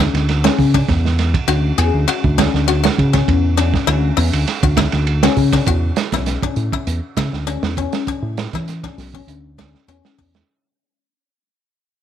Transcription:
0.00 0.18 E4 medium
0.13 0.48 D2 medium
0.13 snare soft
0.13 ride bell medium
0.29 snare soft
0.29 ride bell medium
0.44 0.63 C#4 medium
0.44 snare medium
0.59 0.82 C#3 medium
0.59 kick medium
0.59 open hi-hat medium
0.74 0.83 D4 medium
0.74 kick medium
0.74 ride bell medium
0.89 1.35 E2 medium
0.89 kick loud
0.89 snare soft
0.89 ride bell medium
1.05 snare soft
1.19 snare soft
1.19 ride bell soft
1.34 kick medium
1.34 ride bell medium
1.48 1.71 D2 loud
1.48 1.67 F#4 medium
1.48 ride bell medium
1.78 1.90 E2 loud
1.78 1.97 G#4 medium
1.78 ride bell soft
1.94 2.05 D2 medium
2.08 2.27 F#4 medium
2.08 ride bell medium
2.24 2.47 D2 loud
2.24 kick medium
2.38 2.57 D4 medium
2.38 kick medium
2.38 snare medium
2.38 ride bell medium
2.54 2.88 D2 medium
2.54 snare soft
2.68 2.78 F#4 loud
2.68 ride bell medium
2.84 3.03 F#4 medium
2.84 snare medium
2.98 3.21 C#3 loud
2.98 kick medium
2.98 ride bell medium
3.13 3.33 C#4 medium
3.13 kick medium
3.13 snare soft
3.13 ride bell medium
3.28 3.74 E2 medium
3.28 kick loud
3.28 ride bell medium
3.57 3.77 D4 medium
3.57 ride bell medium
3.74 kick medium
3.74 snare soft
3.87 4.10 D2 medium
3.87 4.07 E4 medium
3.87 ride bell medium
4.17 4.30 E2 loud
4.17 4.36 E4 medium
4.17 open hi-hat medium
4.33 4.44 D2 medium
4.33 ride bell medium
4.47 snare soft
4.47 ride bell medium
4.63 4.86 D2 loud
4.63 4.72 F#4 medium
4.63 kick medium
4.77 4.97 E4 medium
4.77 kick medium
4.77 snare medium
4.77 ride bell medium
4.92 5.27 D2 medium
4.92 snare soft
4.92 ride bell medium
5.07 ride bell medium
5.23 5.42 C#4 medium
5.23 snare medium
5.36 5.60 C#3 medium
5.36 kick medium
5.36 open hi-hat medium
5.52 5.62 D4 medium
5.52 kick medium
5.52 snare soft
5.52 ride bell medium
5.67 5.90 E2 medium
5.67 5.87 F#4 medium
5.67 kick medium
5.67 closed hi-hat medium
5.96 snare medium
5.96 closed hi-hat medium
6.12 6.36 B1 medium
6.12 6.33 E4 medium
6.12 kick medium
6.12 snare soft
6.12 closed hi-hat medium
6.26 snare soft
6.26 closed hi-hat medium
6.43 6.62 D4 medium
6.43 kick medium
6.56 6.69 A2 medium
6.56 closed hi-hat soft
6.72 6.92 E4 medium
6.72 kick medium
6.87 6.99 E2 medium
6.87 closed hi-hat medium
7.17 7.29 C#3 medium
7.17 7.37 E4 medium
7.17 kick medium
7.17 snare medium
7.17 closed hi-hat medium
7.33 7.56 D2 medium
7.33 snare soft
7.47 7.66 D4 medium
7.47 closed hi-hat medium
7.62 7.86 E2 medium
7.62 snare medium
7.77 7.97 C#4 medium
7.77 kick medium
7.77 closed hi-hat soft
7.93 snare medium
7.93 closed hi-hat medium
8.07 8.27 D4 medium
8.07 kick loud
8.07 closed hi-hat medium
8.22 8.46 A2 loud
8.37 snare medium
8.37 closed hi-hat soft
8.53 8.87 E3 medium
8.53 8.74 E4 medium
8.53 kick medium
8.53 snare soft
8.53 closed hi-hat soft
8.68 snare soft
8.68 closed hi-hat medium
8.84 9.03 D4 medium
8.84 kick medium
8.84 snare soft
8.98 9.21 B1 medium
8.98 snare soft
8.98 open hi-hat medium
9.14 9.33 C#4 medium
9.14 kick medium
9.27 9.74 D2 loud
9.27 closed hi-hat medium
9.58 9.78 D4 medium
9.58 kick medium
9.58 snare medium
9.58 closed hi-hat soft
9.75 snare soft
9.88 10.00 E2 medium
9.88 10.08 C#4 medium
9.88 closed hi-hat medium
10.05 snare medium
10.18 10.41 E2 medium
10.18 10.38 D4 medium
10.18 kick medium
10.18 open hi-hat medium
10.34 snare medium
10.34 closed hi-hat medium

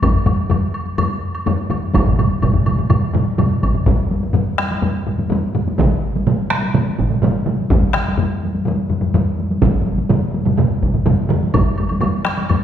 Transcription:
0.02 taiko medium
0.02 taiko low-mid medium
0.02 taiko high medium
0.02 high woodblock medium
0.14 taiko low-mid medium
0.14 taiko high soft
0.26 taiko low-mid loud
0.26 taiko high medium
0.26 high woodblock soft
0.49 taiko low-mid loud
0.49 taiko high medium
0.49 high woodblock soft
0.62 taiko high soft
0.74 high woodblock soft
0.87 taiko high soft
0.98 taiko low-mid loud
0.98 taiko high medium
0.98 high woodblock medium
1.11 taiko high soft
1.34 taiko high soft
1.34 high woodblock soft
1.46 taiko low-mid loud
1.46 taiko high medium
1.46 high woodblock soft
1.59 taiko high soft
1.70 taiko low-mid medium
1.70 taiko high soft
1.70 high woodblock soft
1.82 taiko high soft
1.94 taiko loud
1.94 taiko low-mid medium
1.94 taiko mid medium
1.94 taiko high medium
1.94 high woodblock soft
2.07 taiko low-mid medium
2.07 taiko mid medium
2.07 taiko high soft
2.19 taiko low-mid medium
2.19 taiko mid medium
2.19 taiko high medium
2.19 high woodblock soft
2.42 taiko medium
2.42 taiko low-mid medium
2.42 taiko mid medium
2.42 taiko high medium
2.42 high woodblock soft
2.54 taiko low-mid medium
2.54 taiko mid medium
2.54 taiko high soft
2.66 taiko low-mid medium
2.66 taiko mid medium
2.66 taiko high medium
2.66 high woodblock soft
2.78 taiko low-mid medium
2.78 taiko mid medium
2.78 taiko high soft
2.90 taiko low-mid medium
2.90 taiko mid loud
2.90 taiko high medium
2.90 high woodblock medium
3.03 taiko high soft
3.13 taiko low-mid medium
3.13 taiko mid loud
3.13 taiko high medium
3.28 taiko high soft
3.38 taiko low-mid loud
3.38 taiko mid loud
3.38 taiko high medium
3.38 high woodblock soft
3.50 taiko high soft
3.62 taiko medium
3.62 taiko high medium
3.62 high woodblock soft
3.75 taiko low-mid medium
3.75 taiko mid medium
3.75 taiko high soft
3.86 taiko loud
3.86 taiko low-mid medium
3.86 taiko high medium
4.11 taiko high medium
4.23 taiko high medium
4.34 taiko low-mid medium
4.34 taiko high medium
4.58 taiko rim medium
4.58 taiko high medium
4.71 taiko high medium
4.82 taiko low-mid medium
4.82 taiko high medium
5.07 taiko low-mid medium
5.07 taiko high medium
5.18 taiko low-mid medium
5.18 taiko high medium
5.30 taiko low-mid loud
5.30 taiko high medium
5.55 taiko low-mid loud
5.55 taiko high soft
5.68 taiko high medium
5.78 taiko loud
5.78 taiko mid loud
5.78 taiko high medium
6.15 taiko high medium
6.27 taiko mid loud
6.27 taiko high medium
6.50 taiko rim medium
6.50 taiko high medium
6.63 taiko high medium
6.74 taiko mid medium
6.74 taiko high medium
6.98 taiko medium
6.98 taiko mid medium
6.98 taiko high medium
7.10 taiko mid medium
7.10 taiko high soft
7.22 taiko mid loud
7.22 taiko high medium
7.46 taiko mid loud
7.46 taiko high soft
7.61 taiko high soft
7.70 taiko loud
7.70 taiko low-mid medium
7.70 taiko high medium
7.94 taiko rim medium
7.94 taiko high medium
8.08 taiko high medium
8.17 taiko low-mid loud
8.17 taiko high medium
8.43 taiko high medium
8.55 taiko high medium
8.65 taiko low-mid medium
8.65 taiko high medium
8.90 taiko low-mid medium
8.90 taiko high medium
9.02 taiko low-mid medium
9.02 taiko high soft
9.14 taiko low-mid loud
9.14 taiko high medium
9.39 taiko high soft
9.51 taiko high medium
9.62 taiko loud
9.62 taiko low-mid medium
9.62 taiko mid medium
9.62 taiko high medium
9.86 taiko high medium
9.98 taiko high medium
10.10 taiko low-mid medium
10.10 taiko mid loud
10.10 taiko high medium
10.34 taiko high medium
10.46 taiko low-mid medium
10.46 taiko mid medium
10.46 taiko high medium
10.58 taiko low-mid medium
10.58 taiko mid loud
10.58 taiko high medium
10.82 taiko medium
10.82 taiko high medium
10.94 taiko low-mid medium
10.94 taiko mid medium
10.94 taiko high soft
11.06 taiko low-mid loud
11.06 taiko mid loud
11.06 taiko high medium
11.29 taiko low-mid medium
11.29 taiko mid loud
11.29 taiko high soft
11.43 taiko high medium
11.54 taiko loud
11.54 taiko low-mid loud
11.54 taiko high medium
11.54 high woodblock medium
11.78 taiko high medium
11.78 high woodblock soft
11.89 taiko high soft
11.89 high woodblock soft
12.01 taiko low-mid loud
12.01 taiko high medium
12.01 high woodblock medium
12.25 taiko rim medium
12.25 taiko high medium
12.25 high woodblock soft
12.37 taiko high medium
12.37 high woodblock soft
12.49 taiko low-mid medium
12.49 taiko high medium
12.49 high woodblock medium

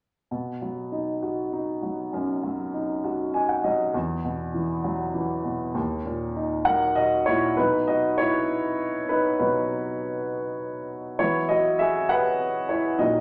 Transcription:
0.31 2.10 B2 soft
0.62 1.80 F#3 soft
0.92 1.51 D#4 soft
1.23 2.40 F#4 soft
1.53 2.71 D#4 soft
1.82 2.42 F#3 soft
2.13 3.91 F#2 soft
2.43 3.61 F#3 soft
2.74 3.33 D#4 soft
3.04 3.92 F#4 soft
3.34 3.93 D#4 soft
3.34 3.48 G#5 soft
3.49 3.63 F#5 soft
3.64 3.93 F#3 soft
3.64 3.92 D#5 soft
3.94 5.71 E2 medium
4.25 5.42 B2 soft
4.54 5.13 E3 soft
4.84 5.72 F#3 soft
5.14 5.73 E3 soft
5.45 5.74 B2 soft
5.74 7.53 D#2 soft
6.05 7.23 A#2 soft
6.36 7.54 D#4 soft
6.65 7.55 F#3 soft
6.65 6.95 A#4 medium
6.65 6.97 F#5 medium
6.95 7.26 F#4 medium
6.95 7.24 D#5 medium
7.26 7.57 A#2 soft
7.26 7.56 E4 medium
7.26 7.58 C#5 medium
7.57 7.98 B2 soft
7.57 7.99 F#3 soft
7.57 7.87 D#4 medium
7.57 7.86 B4 medium
7.87 7.96 F#4 medium
7.87 7.94 D#5 medium
8.18 9.06 E4 soft
8.18 9.12 C#5 medium
9.09 9.38 D#4 soft
9.09 9.38 B4 medium
9.39 10.26 B2 soft
9.39 10.26 F#3 soft
9.39 10.04 D#4 soft
9.39 10.03 B4 medium
11.19 12.06 E3 soft
11.19 12.06 F#3 soft
11.19 12.06 B3 soft
11.19 11.48 E4 medium
11.19 11.47 C#5 medium
11.49 11.78 F#4 soft
11.49 11.80 D#5 medium
11.79 12.08 G#4 medium
11.79 12.10 E5 medium
12.09 12.66 B4 medium
12.09 12.71 F#5 medium
12.69 12.98 E4 soft
12.69 13.00 C#5 medium
12.98 13.21 A#2 soft
12.98 13.21 D#3 soft
12.98 13.21 F#3 soft
12.98 13.21 F#4 soft
12.98 13.21 D#5 medium

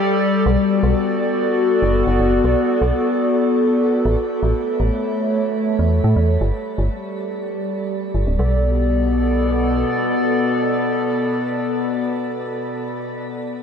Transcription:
0.00 0.44 G3 medium
0.00 0.44 G4 medium
0.00 0.42 A4 medium
0.00 0.44 D5 medium
0.46 0.57 B1 loud
0.46 4.39 B3 medium
0.46 4.39 F#4 medium
0.46 8.35 A4 medium
0.46 4.39 D5 medium
0.83 0.94 B1 loud
1.82 2.03 F#1 medium
2.07 2.18 F#1 medium
2.20 2.41 F#1 medium
2.44 2.55 B1 loud
2.82 2.92 B1 loud
4.05 4.16 A1 loud
4.43 4.53 A1 loud
4.43 6.39 A3 medium
4.43 6.39 C#5 medium
4.43 6.39 E5 medium
4.80 4.90 A1 loud
5.79 6.00 E2 medium
6.04 6.15 A2 medium
6.16 6.37 E2 medium
6.41 6.52 G1 loud
6.41 8.38 G3 medium
6.41 8.38 G4 medium
6.41 8.37 D5 medium
6.78 6.89 G1 loud
8.15 8.25 G1 medium
8.27 8.38 D1 medium
8.39 9.84 B1 medium
8.39 13.12 B2 medium
8.39 13.12 B3 medium
8.39 13.12 A4 medium
8.39 13.12 D5 medium

